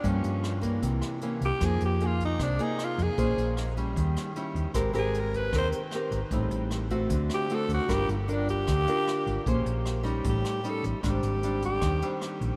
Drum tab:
HH |xxxxxxxx|xxxxxxxx|xxxxxxxx|xxxxxxxx|
SD |--r--r--|r---r-r-|--r--r--|r---r-r-|
BD |o--oo--o|o--oo--o|o--oo--o|o--oo--o|

HH |xxxxxxxx|xxxxxxxx|xxxxxxxx|xxxxxxxx|
SD |--r--r--|r---r-r-|--r--r--|r---r-r-|
BD |o--oo--o|o--oo--o|o--oo--o|o--oo--o|